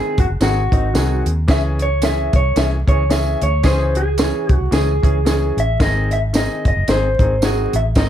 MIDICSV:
0, 0, Header, 1, 6, 480
1, 0, Start_track
1, 0, Key_signature, 4, "minor"
1, 0, Tempo, 539568
1, 1322, Time_signature, 4, 2, 24, 8
1, 7200, End_track
2, 0, Start_track
2, 0, Title_t, "Clean electric guitar"
2, 0, Program_c, 0, 27
2, 0, Note_on_c, 0, 68, 90
2, 176, Note_on_c, 0, 66, 77
2, 177, Note_off_c, 0, 68, 0
2, 228, Note_off_c, 0, 66, 0
2, 381, Note_on_c, 0, 66, 80
2, 1095, Note_off_c, 0, 66, 0
2, 1342, Note_on_c, 0, 76, 108
2, 1415, Note_off_c, 0, 76, 0
2, 1623, Note_on_c, 0, 73, 98
2, 1817, Note_off_c, 0, 73, 0
2, 1821, Note_on_c, 0, 76, 97
2, 2094, Note_off_c, 0, 76, 0
2, 2098, Note_on_c, 0, 73, 93
2, 2295, Note_off_c, 0, 73, 0
2, 2298, Note_on_c, 0, 76, 97
2, 2371, Note_off_c, 0, 76, 0
2, 2568, Note_on_c, 0, 73, 96
2, 2768, Note_off_c, 0, 73, 0
2, 2772, Note_on_c, 0, 76, 100
2, 3048, Note_off_c, 0, 76, 0
2, 3051, Note_on_c, 0, 73, 86
2, 3252, Note_off_c, 0, 73, 0
2, 3258, Note_on_c, 0, 72, 90
2, 3530, Note_on_c, 0, 68, 95
2, 3537, Note_off_c, 0, 72, 0
2, 4037, Note_off_c, 0, 68, 0
2, 4037, Note_on_c, 0, 66, 95
2, 4198, Note_off_c, 0, 66, 0
2, 4209, Note_on_c, 0, 68, 85
2, 4981, Note_on_c, 0, 76, 92
2, 4987, Note_off_c, 0, 68, 0
2, 5176, Note_off_c, 0, 76, 0
2, 5180, Note_on_c, 0, 75, 99
2, 5446, Note_off_c, 0, 75, 0
2, 5450, Note_on_c, 0, 76, 88
2, 5503, Note_off_c, 0, 76, 0
2, 5662, Note_on_c, 0, 75, 87
2, 5930, Note_off_c, 0, 75, 0
2, 5940, Note_on_c, 0, 75, 83
2, 6136, Note_off_c, 0, 75, 0
2, 6140, Note_on_c, 0, 72, 93
2, 6624, Note_off_c, 0, 72, 0
2, 6629, Note_on_c, 0, 68, 83
2, 6902, Note_off_c, 0, 68, 0
2, 6902, Note_on_c, 0, 76, 86
2, 6953, Note_off_c, 0, 76, 0
2, 7107, Note_on_c, 0, 75, 98
2, 7200, Note_off_c, 0, 75, 0
2, 7200, End_track
3, 0, Start_track
3, 0, Title_t, "Grand piano"
3, 0, Program_c, 1, 0
3, 0, Note_on_c, 1, 51, 70
3, 0, Note_on_c, 1, 60, 60
3, 0, Note_on_c, 1, 68, 74
3, 192, Note_off_c, 1, 51, 0
3, 197, Note_off_c, 1, 60, 0
3, 199, Note_off_c, 1, 68, 0
3, 360, Note_on_c, 1, 51, 73
3, 364, Note_on_c, 1, 60, 65
3, 373, Note_on_c, 1, 68, 76
3, 524, Note_off_c, 1, 51, 0
3, 526, Note_off_c, 1, 60, 0
3, 530, Note_off_c, 1, 68, 0
3, 637, Note_on_c, 1, 51, 62
3, 645, Note_on_c, 1, 60, 61
3, 653, Note_on_c, 1, 63, 75
3, 756, Note_off_c, 1, 51, 0
3, 760, Note_off_c, 1, 60, 0
3, 764, Note_off_c, 1, 63, 0
3, 834, Note_on_c, 1, 51, 72
3, 842, Note_on_c, 1, 60, 62
3, 849, Note_on_c, 1, 68, 72
3, 1150, Note_off_c, 1, 51, 0
3, 1154, Note_off_c, 1, 60, 0
3, 1158, Note_off_c, 1, 68, 0
3, 1312, Note_on_c, 1, 52, 83
3, 1319, Note_on_c, 1, 61, 81
3, 1325, Note_on_c, 1, 68, 95
3, 1629, Note_off_c, 1, 52, 0
3, 1632, Note_off_c, 1, 61, 0
3, 1635, Note_off_c, 1, 68, 0
3, 1796, Note_on_c, 1, 52, 64
3, 1802, Note_on_c, 1, 61, 58
3, 1807, Note_on_c, 1, 68, 75
3, 2111, Note_off_c, 1, 52, 0
3, 2114, Note_off_c, 1, 61, 0
3, 2116, Note_off_c, 1, 68, 0
3, 2274, Note_on_c, 1, 52, 66
3, 2279, Note_on_c, 1, 61, 64
3, 2288, Note_on_c, 1, 68, 76
3, 2440, Note_off_c, 1, 52, 0
3, 2443, Note_off_c, 1, 61, 0
3, 2447, Note_off_c, 1, 68, 0
3, 2553, Note_on_c, 1, 52, 67
3, 2558, Note_on_c, 1, 61, 59
3, 2564, Note_on_c, 1, 68, 67
3, 2673, Note_off_c, 1, 52, 0
3, 2676, Note_off_c, 1, 61, 0
3, 2679, Note_off_c, 1, 68, 0
3, 2753, Note_on_c, 1, 52, 69
3, 2760, Note_on_c, 1, 61, 66
3, 2766, Note_on_c, 1, 68, 78
3, 3069, Note_off_c, 1, 52, 0
3, 3073, Note_off_c, 1, 61, 0
3, 3076, Note_off_c, 1, 68, 0
3, 3231, Note_on_c, 1, 52, 81
3, 3241, Note_on_c, 1, 61, 79
3, 3244, Note_on_c, 1, 68, 93
3, 3548, Note_off_c, 1, 52, 0
3, 3553, Note_off_c, 1, 61, 0
3, 3555, Note_off_c, 1, 68, 0
3, 3714, Note_on_c, 1, 52, 68
3, 3722, Note_on_c, 1, 61, 65
3, 3726, Note_on_c, 1, 68, 73
3, 4030, Note_off_c, 1, 52, 0
3, 4033, Note_off_c, 1, 61, 0
3, 4036, Note_off_c, 1, 68, 0
3, 4189, Note_on_c, 1, 52, 72
3, 4199, Note_on_c, 1, 61, 65
3, 4205, Note_on_c, 1, 68, 76
3, 4357, Note_off_c, 1, 52, 0
3, 4362, Note_off_c, 1, 61, 0
3, 4365, Note_off_c, 1, 68, 0
3, 4469, Note_on_c, 1, 52, 64
3, 4475, Note_on_c, 1, 61, 58
3, 4482, Note_on_c, 1, 68, 70
3, 4591, Note_off_c, 1, 52, 0
3, 4594, Note_off_c, 1, 61, 0
3, 4598, Note_off_c, 1, 68, 0
3, 4671, Note_on_c, 1, 52, 68
3, 4677, Note_on_c, 1, 61, 62
3, 4684, Note_on_c, 1, 68, 76
3, 4988, Note_off_c, 1, 52, 0
3, 4991, Note_off_c, 1, 61, 0
3, 4994, Note_off_c, 1, 68, 0
3, 5156, Note_on_c, 1, 51, 90
3, 5159, Note_on_c, 1, 60, 78
3, 5169, Note_on_c, 1, 68, 90
3, 5471, Note_off_c, 1, 51, 0
3, 5472, Note_off_c, 1, 60, 0
3, 5477, Note_off_c, 1, 68, 0
3, 5632, Note_on_c, 1, 51, 66
3, 5640, Note_on_c, 1, 60, 60
3, 5648, Note_on_c, 1, 68, 76
3, 5949, Note_off_c, 1, 51, 0
3, 5952, Note_off_c, 1, 60, 0
3, 5956, Note_off_c, 1, 68, 0
3, 6120, Note_on_c, 1, 51, 65
3, 6128, Note_on_c, 1, 60, 63
3, 6134, Note_on_c, 1, 68, 79
3, 6283, Note_off_c, 1, 51, 0
3, 6287, Note_off_c, 1, 60, 0
3, 6290, Note_off_c, 1, 68, 0
3, 6400, Note_on_c, 1, 51, 65
3, 6402, Note_on_c, 1, 60, 62
3, 6411, Note_on_c, 1, 68, 69
3, 6517, Note_off_c, 1, 51, 0
3, 6518, Note_off_c, 1, 60, 0
3, 6522, Note_off_c, 1, 68, 0
3, 6601, Note_on_c, 1, 51, 69
3, 6604, Note_on_c, 1, 60, 62
3, 6611, Note_on_c, 1, 66, 77
3, 6913, Note_off_c, 1, 51, 0
3, 6915, Note_off_c, 1, 60, 0
3, 6918, Note_off_c, 1, 66, 0
3, 7082, Note_on_c, 1, 51, 89
3, 7087, Note_on_c, 1, 60, 84
3, 7097, Note_on_c, 1, 63, 99
3, 7200, Note_off_c, 1, 51, 0
3, 7200, Note_off_c, 1, 60, 0
3, 7200, Note_off_c, 1, 63, 0
3, 7200, End_track
4, 0, Start_track
4, 0, Title_t, "Horn section"
4, 0, Program_c, 2, 61
4, 3228, Note_on_c, 2, 52, 87
4, 3229, Note_on_c, 2, 61, 83
4, 3234, Note_on_c, 2, 56, 90
4, 3234, Note_on_c, 2, 68, 98
4, 3410, Note_off_c, 2, 52, 0
4, 3411, Note_off_c, 2, 61, 0
4, 3415, Note_off_c, 2, 56, 0
4, 3415, Note_off_c, 2, 68, 0
4, 7200, End_track
5, 0, Start_track
5, 0, Title_t, "Fingered electric bass"
5, 0, Program_c, 3, 33
5, 159, Note_on_c, 3, 30, 87
5, 247, Note_off_c, 3, 30, 0
5, 262, Note_on_c, 3, 30, 67
5, 349, Note_off_c, 3, 30, 0
5, 361, Note_on_c, 3, 32, 87
5, 602, Note_off_c, 3, 32, 0
5, 640, Note_on_c, 3, 32, 86
5, 813, Note_off_c, 3, 32, 0
5, 845, Note_on_c, 3, 36, 82
5, 1084, Note_off_c, 3, 36, 0
5, 1118, Note_on_c, 3, 39, 91
5, 1292, Note_off_c, 3, 39, 0
5, 1321, Note_on_c, 3, 37, 96
5, 2045, Note_off_c, 3, 37, 0
5, 2076, Note_on_c, 3, 36, 86
5, 2250, Note_off_c, 3, 36, 0
5, 2275, Note_on_c, 3, 36, 83
5, 2518, Note_off_c, 3, 36, 0
5, 2559, Note_on_c, 3, 37, 84
5, 2972, Note_off_c, 3, 37, 0
5, 3040, Note_on_c, 3, 38, 100
5, 3213, Note_off_c, 3, 38, 0
5, 3238, Note_on_c, 3, 37, 93
5, 3828, Note_off_c, 3, 37, 0
5, 3998, Note_on_c, 3, 36, 90
5, 4085, Note_off_c, 3, 36, 0
5, 4098, Note_on_c, 3, 36, 80
5, 4185, Note_off_c, 3, 36, 0
5, 4196, Note_on_c, 3, 37, 92
5, 4438, Note_off_c, 3, 37, 0
5, 4478, Note_on_c, 3, 37, 79
5, 4892, Note_off_c, 3, 37, 0
5, 4954, Note_on_c, 3, 33, 86
5, 5129, Note_off_c, 3, 33, 0
5, 5162, Note_on_c, 3, 32, 98
5, 5750, Note_off_c, 3, 32, 0
5, 5919, Note_on_c, 3, 30, 89
5, 6006, Note_off_c, 3, 30, 0
5, 6017, Note_on_c, 3, 30, 88
5, 6105, Note_off_c, 3, 30, 0
5, 6117, Note_on_c, 3, 32, 90
5, 6359, Note_off_c, 3, 32, 0
5, 6397, Note_on_c, 3, 32, 85
5, 6811, Note_off_c, 3, 32, 0
5, 6879, Note_on_c, 3, 33, 91
5, 7052, Note_off_c, 3, 33, 0
5, 7082, Note_on_c, 3, 32, 101
5, 7200, Note_off_c, 3, 32, 0
5, 7200, End_track
6, 0, Start_track
6, 0, Title_t, "Drums"
6, 159, Note_on_c, 9, 42, 80
6, 161, Note_on_c, 9, 36, 94
6, 248, Note_off_c, 9, 42, 0
6, 250, Note_off_c, 9, 36, 0
6, 362, Note_on_c, 9, 42, 78
6, 363, Note_on_c, 9, 54, 76
6, 373, Note_on_c, 9, 38, 106
6, 451, Note_off_c, 9, 42, 0
6, 452, Note_off_c, 9, 54, 0
6, 462, Note_off_c, 9, 38, 0
6, 641, Note_on_c, 9, 36, 81
6, 645, Note_on_c, 9, 42, 74
6, 730, Note_off_c, 9, 36, 0
6, 734, Note_off_c, 9, 42, 0
6, 844, Note_on_c, 9, 42, 78
6, 845, Note_on_c, 9, 54, 81
6, 846, Note_on_c, 9, 38, 96
6, 933, Note_off_c, 9, 42, 0
6, 934, Note_off_c, 9, 54, 0
6, 935, Note_off_c, 9, 38, 0
6, 1121, Note_on_c, 9, 42, 64
6, 1210, Note_off_c, 9, 42, 0
6, 1317, Note_on_c, 9, 54, 61
6, 1319, Note_on_c, 9, 42, 81
6, 1321, Note_on_c, 9, 36, 100
6, 1328, Note_on_c, 9, 38, 97
6, 1406, Note_off_c, 9, 54, 0
6, 1408, Note_off_c, 9, 42, 0
6, 1410, Note_off_c, 9, 36, 0
6, 1417, Note_off_c, 9, 38, 0
6, 1596, Note_on_c, 9, 42, 57
6, 1685, Note_off_c, 9, 42, 0
6, 1795, Note_on_c, 9, 42, 92
6, 1797, Note_on_c, 9, 54, 80
6, 1810, Note_on_c, 9, 38, 104
6, 1884, Note_off_c, 9, 42, 0
6, 1886, Note_off_c, 9, 54, 0
6, 1899, Note_off_c, 9, 38, 0
6, 2074, Note_on_c, 9, 42, 78
6, 2077, Note_on_c, 9, 36, 86
6, 2163, Note_off_c, 9, 42, 0
6, 2166, Note_off_c, 9, 36, 0
6, 2278, Note_on_c, 9, 42, 82
6, 2280, Note_on_c, 9, 54, 77
6, 2289, Note_on_c, 9, 38, 115
6, 2367, Note_off_c, 9, 42, 0
6, 2369, Note_off_c, 9, 54, 0
6, 2378, Note_off_c, 9, 38, 0
6, 2558, Note_on_c, 9, 36, 82
6, 2563, Note_on_c, 9, 42, 73
6, 2647, Note_off_c, 9, 36, 0
6, 2652, Note_off_c, 9, 42, 0
6, 2761, Note_on_c, 9, 42, 82
6, 2764, Note_on_c, 9, 38, 97
6, 2766, Note_on_c, 9, 54, 78
6, 2850, Note_off_c, 9, 42, 0
6, 2853, Note_off_c, 9, 38, 0
6, 2855, Note_off_c, 9, 54, 0
6, 3039, Note_on_c, 9, 42, 65
6, 3127, Note_off_c, 9, 42, 0
6, 3234, Note_on_c, 9, 42, 80
6, 3238, Note_on_c, 9, 36, 105
6, 3240, Note_on_c, 9, 54, 68
6, 3243, Note_on_c, 9, 38, 98
6, 3323, Note_off_c, 9, 42, 0
6, 3327, Note_off_c, 9, 36, 0
6, 3329, Note_off_c, 9, 54, 0
6, 3332, Note_off_c, 9, 38, 0
6, 3516, Note_on_c, 9, 42, 59
6, 3605, Note_off_c, 9, 42, 0
6, 3716, Note_on_c, 9, 42, 94
6, 3717, Note_on_c, 9, 54, 83
6, 3731, Note_on_c, 9, 38, 105
6, 3805, Note_off_c, 9, 42, 0
6, 3806, Note_off_c, 9, 54, 0
6, 3820, Note_off_c, 9, 38, 0
6, 3997, Note_on_c, 9, 42, 72
6, 3998, Note_on_c, 9, 36, 90
6, 4086, Note_off_c, 9, 42, 0
6, 4087, Note_off_c, 9, 36, 0
6, 4200, Note_on_c, 9, 42, 85
6, 4202, Note_on_c, 9, 54, 77
6, 4212, Note_on_c, 9, 38, 112
6, 4289, Note_off_c, 9, 42, 0
6, 4291, Note_off_c, 9, 54, 0
6, 4301, Note_off_c, 9, 38, 0
6, 4478, Note_on_c, 9, 36, 84
6, 4486, Note_on_c, 9, 42, 72
6, 4567, Note_off_c, 9, 36, 0
6, 4575, Note_off_c, 9, 42, 0
6, 4682, Note_on_c, 9, 42, 80
6, 4685, Note_on_c, 9, 38, 92
6, 4688, Note_on_c, 9, 54, 86
6, 4771, Note_off_c, 9, 42, 0
6, 4774, Note_off_c, 9, 38, 0
6, 4777, Note_off_c, 9, 54, 0
6, 4963, Note_on_c, 9, 42, 66
6, 5052, Note_off_c, 9, 42, 0
6, 5161, Note_on_c, 9, 36, 103
6, 5161, Note_on_c, 9, 42, 77
6, 5164, Note_on_c, 9, 54, 71
6, 5170, Note_on_c, 9, 38, 104
6, 5250, Note_off_c, 9, 36, 0
6, 5250, Note_off_c, 9, 42, 0
6, 5253, Note_off_c, 9, 54, 0
6, 5259, Note_off_c, 9, 38, 0
6, 5438, Note_on_c, 9, 42, 61
6, 5526, Note_off_c, 9, 42, 0
6, 5638, Note_on_c, 9, 42, 89
6, 5638, Note_on_c, 9, 54, 82
6, 5652, Note_on_c, 9, 38, 108
6, 5727, Note_off_c, 9, 42, 0
6, 5727, Note_off_c, 9, 54, 0
6, 5741, Note_off_c, 9, 38, 0
6, 5917, Note_on_c, 9, 42, 75
6, 5918, Note_on_c, 9, 36, 87
6, 6006, Note_off_c, 9, 42, 0
6, 6007, Note_off_c, 9, 36, 0
6, 6118, Note_on_c, 9, 42, 78
6, 6118, Note_on_c, 9, 54, 82
6, 6129, Note_on_c, 9, 38, 103
6, 6206, Note_off_c, 9, 54, 0
6, 6207, Note_off_c, 9, 42, 0
6, 6218, Note_off_c, 9, 38, 0
6, 6399, Note_on_c, 9, 36, 86
6, 6406, Note_on_c, 9, 42, 70
6, 6488, Note_off_c, 9, 36, 0
6, 6495, Note_off_c, 9, 42, 0
6, 6601, Note_on_c, 9, 54, 86
6, 6606, Note_on_c, 9, 42, 82
6, 6609, Note_on_c, 9, 38, 101
6, 6690, Note_off_c, 9, 54, 0
6, 6695, Note_off_c, 9, 42, 0
6, 6698, Note_off_c, 9, 38, 0
6, 6880, Note_on_c, 9, 42, 70
6, 6969, Note_off_c, 9, 42, 0
6, 7075, Note_on_c, 9, 54, 64
6, 7077, Note_on_c, 9, 42, 83
6, 7081, Note_on_c, 9, 36, 98
6, 7086, Note_on_c, 9, 38, 103
6, 7164, Note_off_c, 9, 54, 0
6, 7166, Note_off_c, 9, 42, 0
6, 7170, Note_off_c, 9, 36, 0
6, 7175, Note_off_c, 9, 38, 0
6, 7200, End_track
0, 0, End_of_file